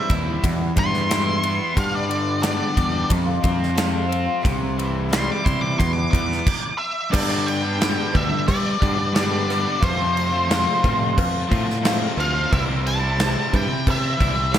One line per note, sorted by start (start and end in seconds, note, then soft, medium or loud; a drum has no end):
0.00 0.44 C3 medium
0.00 0.44 E3 medium
0.00 0.44 G3 medium
0.00 0.10 C4 soft
0.00 0.11 E5 medium
0.10 0.37 D#2 medium
0.10 0.27 E3 soft
0.10 0.27 G3 medium
0.10 0.26 C4 medium
0.10 0.25 E4 medium
0.10 kick medium
0.10 ride medium
0.27 0.42 G3 soft
0.27 0.44 C4 medium
0.27 0.43 E4 medium
0.42 0.60 E2 medium
0.42 0.71 E2 medium
0.42 0.60 B2 medium
0.42 0.60 E3 medium
0.42 0.60 G3 medium
0.42 0.60 B3 medium
0.42 0.58 E4 medium
0.42 kick medium
0.42 ride medium
0.59 0.75 E3 soft
0.59 0.75 G3 soft
0.59 0.77 B3 soft
0.59 0.76 E4 medium
0.76 1.59 G2 loud
0.76 1.08 E3 medium
0.76 1.09 G3 medium
0.76 1.10 B3 medium
0.76 1.10 E4 medium
0.76 1.76 C6 loud
0.76 kick medium
0.76 ride medium
0.94 snare soft
1.09 1.43 E2 medium
1.09 1.44 B2 medium
1.09 1.41 E3 medium
1.09 1.42 G3 medium
1.09 1.43 B3 medium
1.09 1.44 E4 medium
1.09 snare loud
1.09 ride medium
1.42 1.60 E3 medium
1.42 1.59 G3 medium
1.42 1.58 B3 medium
1.42 1.57 E4 medium
1.42 ride medium
1.58 1.75 E3 soft
1.58 1.74 G3 soft
1.58 1.75 B3 medium
1.58 1.76 E4 medium
1.74 2.09 G2 medium
1.74 2.60 G2 loud
1.74 2.10 D3 medium
1.74 2.06 G3 medium
1.74 2.08 B3 medium
1.74 2.08 D4 medium
1.74 2.10 G4 medium
1.74 kick loud
1.74 ride loud
1.79 1.94 F5 loud
1.95 2.42 D5 loud
2.07 3.10 D3 medium
2.07 2.39 G3 medium
2.07 2.40 B3 medium
2.07 2.39 D4 medium
2.07 2.40 G4 medium
2.07 ride medium
2.39 2.75 G2 medium
2.39 2.76 D3 medium
2.39 2.73 G3 medium
2.39 2.74 B3 medium
2.39 2.75 D4 medium
2.39 2.76 G4 loud
2.39 3.09 D5 loud
2.39 ride loud
2.44 snare loud
2.74 3.05 E2 medium
2.74 3.09 G3 medium
2.74 3.09 B3 medium
2.74 3.10 D4 medium
2.74 3.10 G4 medium
2.74 kick medium
2.74 ride medium
3.08 3.26 F2 medium
3.08 3.38 F2 loud
3.08 3.27 C3 medium
3.08 3.27 F3 medium
3.08 3.27 A3 medium
3.08 3.25 C4 medium
3.08 3.25 F4 medium
3.08 kick medium
3.08 ride loud
3.26 3.40 F3 soft
3.26 3.42 A3 soft
3.26 3.43 C4 medium
3.26 3.44 F4 medium
3.42 4.27 F2 medium
3.42 3.74 F3 medium
3.42 3.75 A3 medium
3.42 3.75 C4 medium
3.42 3.76 F4 medium
3.42 kick medium
3.42 ride medium
3.63 snare soft
3.75 4.10 F2 loud
3.75 4.10 C3 loud
3.75 4.08 F3 loud
3.75 4.09 A3 loud
3.75 4.11 C4 medium
3.75 4.11 F4 loud
3.75 snare loud
3.75 ride medium
4.09 4.27 F3 medium
4.09 4.26 A3 medium
4.09 4.25 C4 medium
4.09 4.23 F4 medium
4.09 ride medium
4.25 4.42 F3 medium
4.25 4.42 A3 medium
4.25 4.42 C4 medium
4.25 4.43 F4 medium
4.41 5.28 C2 loud
4.41 4.77 C3 medium
4.41 4.75 E3 medium
4.41 4.76 G3 medium
4.41 4.77 C4 loud
4.41 4.77 E4 medium
4.41 kick loud
4.45 ride medium
4.76 5.09 E3 medium
4.76 5.09 G3 medium
4.76 5.09 C4 medium
4.76 5.10 E4 medium
4.76 ride medium
5.09 5.28 C3 medium
5.09 5.28 E3 medium
5.09 5.28 G3 medium
5.09 5.27 C4 medium
5.09 5.26 E4 medium
5.09 ride medium
5.13 5.29 C6 loud
5.13 snare loud
5.27 5.44 G3 soft
5.27 5.46 C4 soft
5.27 5.45 E4 medium
5.32 5.45 D6 medium
5.44 5.73 C3 medium
5.44 5.62 E3 medium
5.44 5.63 G3 medium
5.44 5.62 C4 medium
5.44 5.60 E4 medium
5.44 5.61 C6 loud
5.44 kick medium
5.44 ride medium
5.61 5.79 G3 soft
5.61 5.80 C4 medium
5.61 5.79 E4 medium
5.61 5.78 D6 loud
5.79 5.96 E2 medium
5.79 6.07 E2 medium
5.79 5.96 B2 medium
5.79 5.96 E3 medium
5.79 5.95 G3 medium
5.79 5.94 B3 medium
5.79 5.94 E4 medium
5.79 5.93 C6 loud
5.79 kick medium
5.79 ride medium
5.93 6.12 G3 soft
5.93 6.13 B3 soft
5.93 6.13 E4 soft
5.93 6.10 D6 loud
5.98 6.11 E3 soft
6.10 6.41 E2 loud
6.10 6.46 E3 medium
6.10 6.47 G3 medium
6.10 6.45 B3 medium
6.10 6.77 D6 loud
6.10 kick medium
6.14 6.48 B3 medium
6.14 6.48 E4 medium
6.14 ride medium
6.32 snare soft
6.47 kick loud
6.47 crash loud
6.78 7.11 E5 medium
7.12 7.46 G2 medium
7.12 7.96 G2 loud
7.12 7.47 D3 medium
7.12 7.45 G3 medium
7.12 7.46 B3 medium
7.12 7.48 D4 medium
7.12 7.48 G4 medium
7.12 7.48 D5 loud
7.12 kick loud
7.12 crash loud
7.12 cowbell loud
7.12 crash medium
7.29 7.64 G3 medium
7.29 7.62 B3 medium
7.29 7.61 D4 medium
7.29 7.60 G4 medium
7.46 7.64 G3 medium
7.46 7.63 B3 medium
7.46 7.63 D4 medium
7.46 7.61 G4 medium
7.46 8.16 G5 loud
7.46 crash medium
7.63 7.79 G3 soft
7.63 7.79 B3 soft
7.63 7.80 D4 medium
7.63 7.80 G4 medium
7.79 7.97 G2 medium
7.79 7.97 D3 medium
7.79 7.97 G3 medium
7.79 7.97 B3 medium
7.79 7.97 D4 medium
7.79 7.95 G4 medium
7.79 snare loud
7.79 cowbell medium
7.79 crash medium
7.96 8.12 G3 soft
7.96 8.14 B3 soft
7.96 8.14 D4 soft
7.96 8.14 G4 soft
8.13 8.29 D2 medium
8.13 8.31 G3 medium
8.13 8.31 B3 medium
8.13 8.30 D4 medium
8.13 8.29 G4 medium
8.13 8.48 E5 medium
8.13 kick medium
8.13 cowbell medium
8.13 crash medium
8.30 8.78 G3 soft
8.30 8.80 B3 soft
8.30 8.81 D4 medium
8.30 8.81 G4 medium
8.30 muted overdriven electric guitar stroke soft
8.48 8.76 G3 loud
8.48 9.11 D5 medium
8.48 kick medium
8.48 cowbell loud
8.48 crash medium
8.79 9.65 G2 medium
8.79 8.97 G3 medium
8.79 8.97 B3 medium
8.79 8.96 D4 medium
8.79 8.95 G4 medium
8.79 kick medium
8.79 crash medium
8.96 9.13 G3 soft
8.96 9.14 B3 soft
8.96 9.14 D4 medium
8.96 9.14 G4 medium
8.96 muted overdriven electric guitar stroke medium
9.14 9.31 G2 medium
9.14 9.32 D3 medium
9.14 9.32 G3 medium
9.14 9.31 B3 medium
9.14 9.30 D4 medium
9.14 9.28 G4 medium
9.14 9.84 D5 medium
9.14 snare loud
9.14 cowbell medium
9.14 crash medium
9.30 9.46 G3 soft
9.30 9.46 B3 soft
9.30 9.48 D4 medium
9.30 9.48 G4 medium
9.47 9.80 G3 medium
9.47 9.80 B3 medium
9.47 9.81 D4 medium
9.47 9.82 G4 medium
9.47 snare soft
9.47 cowbell medium
9.47 crash medium
9.64 9.81 G3 medium
9.64 9.81 B3 medium
9.64 9.80 D4 medium
9.64 9.80 G4 medium
9.80 10.15 F2 medium
9.80 10.65 F2 loud
9.80 10.15 C3 medium
9.80 10.13 F3 medium
9.80 10.14 A3 medium
9.80 10.15 C4 medium
9.80 10.16 F4 medium
9.80 11.13 C5 medium
9.80 kick loud
9.80 cowbell loud
9.80 crash medium
9.97 10.33 F3 medium
9.97 10.32 A3 medium
9.97 10.31 C4 medium
9.97 10.28 F4 medium
10.14 10.32 F3 medium
10.14 10.32 A3 medium
10.14 10.31 C4 medium
10.14 10.30 F4 medium
10.14 crash medium
10.31 10.48 F3 soft
10.31 10.48 A3 soft
10.31 10.49 C4 medium
10.31 10.49 F4 medium
10.49 10.83 F2 medium
10.49 10.83 C3 medium
10.49 10.82 F3 medium
10.49 10.83 A3 medium
10.49 10.84 C4 medium
10.49 10.84 F4 medium
10.49 snare loud
10.49 cowbell medium
10.49 crash medium
10.83 11.17 A2 medium
10.83 11.00 F3 medium
10.83 11.00 A3 medium
10.83 11.00 C4 medium
10.83 10.97 F4 medium
10.83 kick medium
10.83 cowbell medium
10.83 crash medium
10.98 11.49 A3 medium
10.98 11.50 C4 medium
10.98 11.50 F4 medium
10.98 muted overdriven electric guitar stroke medium
11.03 11.47 F3 medium
11.17 11.45 F2 medium
11.17 kick medium
11.17 cowbell loud
11.17 crash medium
11.48 12.06 A2 medium
11.48 11.66 F3 medium
11.48 11.67 A3 medium
11.48 11.67 C4 medium
11.48 11.66 F4 medium
11.48 kick medium
11.48 crash medium
11.66 11.83 F3 medium
11.66 11.84 A3 medium
11.66 11.84 C4 medium
11.66 11.84 F4 medium
11.66 muted overdriven electric guitar stroke medium
11.66 snare soft
11.83 12.01 F2 medium
11.83 12.01 C3 medium
11.83 12.01 F3 medium
11.83 12.01 A3 loud
11.83 12.00 C4 loud
11.83 11.99 F4 loud
11.83 snare loud
11.83 cowbell medium
11.83 crash medium
12.00 12.15 F3 soft
12.00 12.16 A3 soft
12.00 12.17 C4 medium
12.00 12.17 F4 medium
12.16 12.45 D2 medium
12.16 12.49 F3 medium
12.16 12.50 A3 medium
12.16 12.49 C4 medium
12.16 12.51 F4 medium
12.16 cowbell medium
12.20 12.50 F5 medium
12.20 crash medium
12.33 12.50 F3 medium
12.33 12.50 A3 medium
12.33 12.49 C4 medium
12.33 12.48 F4 medium
12.50 13.35 C2 loud
12.50 12.84 C3 medium
12.50 12.80 E3 medium
12.50 12.81 G3 medium
12.50 12.82 C4 medium
12.50 12.84 E4 medium
12.50 12.62 E5 loud
12.50 kick loud
12.50 cowbell medium
12.50 crash medium
12.66 13.02 G3 medium
12.66 13.00 C4 medium
12.66 12.98 E4 medium
12.81 13.00 E3 medium
12.81 13.00 G3 medium
12.81 13.01 C4 medium
12.81 12.99 E4 medium
12.87 13.55 A5 loud
12.87 crash medium
13.00 13.16 G3 soft
13.00 13.17 C4 medium
13.00 13.18 E4 medium
13.17 13.34 C3 medium
13.17 13.35 E3 medium
13.17 13.34 G3 medium
13.17 13.33 C4 medium
13.17 13.31 E4 medium
13.17 snare loud
13.17 cowbell medium
13.17 crash medium
13.33 13.49 G3 soft
13.33 13.51 C4 soft
13.33 13.51 E4 soft
13.49 13.67 E3 medium
13.49 13.68 G3 medium
13.49 13.69 C4 medium
13.49 13.66 E4 medium
13.53 13.67 G2 medium
13.53 13.85 G5 loud
13.53 kick medium
13.53 cowbell medium
13.53 crash medium
13.67 14.17 G3 soft
13.67 14.18 C4 medium
13.67 14.19 E4 medium
13.67 muted overdriven electric guitar stroke medium
13.87 14.14 C3 loud
13.87 14.57 E5 medium
13.87 kick medium
13.87 cowbell medium
13.87 crash medium
14.17 14.59 C2 medium
14.17 14.35 E3 medium
14.17 14.36 G3 medium
14.17 14.36 C4 medium
14.17 14.34 E4 medium
14.17 kick medium
14.17 crash medium
14.35 14.52 G3 soft
14.35 14.51 C4 soft
14.35 14.52 E4 medium
14.35 muted overdriven electric guitar stroke medium
14.52 14.59 C3 medium
14.52 14.59 E3 medium
14.52 14.59 G3 medium
14.52 14.59 C4 medium
14.52 14.59 E4 medium
14.52 snare loud
14.52 cowbell medium
14.52 crash medium